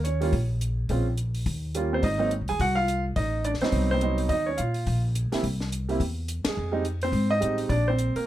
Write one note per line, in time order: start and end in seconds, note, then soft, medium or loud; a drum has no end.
0.00 0.30 D#2 medium
0.04 0.20 C#4 medium
0.04 0.46 C#5 medium
0.04 closed hi-hat soft
0.21 0.31 G3 medium
0.21 0.32 A#3 medium
0.21 0.32 C#4 medium
0.21 0.32 F4 medium
0.21 open hi-hat soft
0.33 0.87 A#1 medium
0.33 kick soft
0.33 open hi-hat soft
0.61 closed hi-hat soft
0.89 1.43 A#1 medium
0.89 1.05 G#3 medium
0.89 1.05 C4 soft
0.89 1.05 C#4 soft
0.89 1.05 F4 medium
0.89 kick soft
0.89 open hi-hat soft
1.17 closed hi-hat soft
1.35 open hi-hat soft
1.46 2.00 D#2 medium
1.46 kick soft
1.46 open hi-hat soft
1.75 2.03 G3 medium
1.75 2.04 A#3 medium
1.75 2.04 C#4 medium
1.75 2.04 F4 medium
1.75 closed hi-hat medium
1.93 2.03 C4 medium
1.93 2.05 C5 medium
2.03 2.38 G#1 medium
2.03 2.19 D#4 medium
2.03 2.30 D#5 medium
2.03 kick soft
2.03 open hi-hat soft
2.18 2.29 F#3 medium
2.18 2.30 A#3 medium
2.18 2.30 C4 medium
2.18 2.30 D#4 medium
2.31 closed hi-hat soft
2.41 2.50 C2 medium
2.48 2.59 D#2 medium
2.48 2.59 G#4 medium
2.48 2.60 G#5 medium
2.48 open hi-hat soft
2.59 3.13 C2 medium
2.59 2.76 F#4 medium
2.59 2.76 F#5 loud
2.59 kick soft
2.59 open hi-hat soft
2.75 3.03 F4 medium
2.75 3.02 F5 loud
2.88 closed hi-hat soft
3.16 3.58 A1 medium
3.16 3.43 D#4 medium
3.16 3.43 D#5 medium
3.16 kick soft
3.16 open hi-hat soft
3.44 3.51 D4 medium
3.44 3.50 D5 medium
3.44 closed hi-hat soft
3.54 snare soft
3.61 3.99 F#3 medium
3.61 4.00 B3 medium
3.61 3.88 C4 medium
3.61 4.00 D#4 medium
3.61 3.88 C5 medium
3.61 muted upright bass stroke soft
3.61 snare soft
3.61 open hi-hat soft
3.72 4.27 C2 medium
3.72 kick soft
3.72 open hi-hat soft
3.91 4.02 C4 medium
3.91 4.17 C5 medium
4.01 4.30 F#3 medium
4.01 4.30 B3 medium
4.01 4.31 C4 medium
4.01 4.31 D#4 medium
4.01 closed hi-hat soft
4.18 open hi-hat soft
4.29 4.56 D#2 medium
4.29 4.47 D#4 medium
4.29 4.47 D#5 medium
4.29 kick soft
4.29 open hi-hat soft
4.46 4.59 C#4 medium
4.46 4.58 C#5 medium
4.57 4.85 A#2 medium
4.57 5.01 F4 medium
4.57 5.00 F5 medium
4.57 closed hi-hat soft
4.74 open hi-hat soft
4.87 5.29 A#1 medium
4.87 kick soft
4.87 open hi-hat soft
5.15 closed hi-hat medium
5.32 5.42 G3 medium
5.32 5.43 A#3 medium
5.32 5.43 C4 medium
5.32 5.43 E4 medium
5.32 muted upright bass stroke soft
5.32 snare soft
5.32 open hi-hat soft
5.43 5.97 C2 medium
5.43 kick soft
5.43 open hi-hat soft
5.60 snare soft
5.72 closed hi-hat soft
5.89 5.99 G3 medium
5.89 5.99 A#3 medium
5.89 6.00 C4 medium
5.89 6.00 E4 medium
5.89 open hi-hat soft
6.00 6.42 E2 medium
6.00 kick soft
6.00 open hi-hat soft
6.28 closed hi-hat medium
6.45 6.56 E2 medium
6.45 6.71 G#3 medium
6.45 6.84 G#4 medium
6.45 snare medium
6.45 ride medium
6.57 7.11 F2 medium
6.72 6.83 G3 medium
6.72 6.83 G#3 medium
6.72 6.84 C4 medium
6.72 6.84 D#4 medium
6.85 closed hi-hat soft
7.02 7.30 C4 medium
7.02 7.32 C5 medium
7.02 open hi-hat soft
7.12 7.39 G#2 medium
7.12 kick soft
7.12 open hi-hat soft
7.31 7.40 D#4 medium
7.31 7.57 D#5 loud
7.40 7.68 A1 medium
7.40 7.69 G3 medium
7.40 7.69 G#3 medium
7.40 7.70 C4 medium
7.40 7.70 D#4 medium
7.40 closed hi-hat medium
7.58 open hi-hat soft
7.69 8.11 A#1 medium
7.69 7.86 D4 medium
7.69 7.87 D5 medium
7.69 kick soft
7.69 open hi-hat soft
7.88 8.15 C4 medium
7.88 8.14 C5 medium
7.99 closed hi-hat soft
8.16 8.26 A#3 medium
8.16 8.26 A#4 medium
8.16 muted upright bass stroke soft
8.16 open hi-hat soft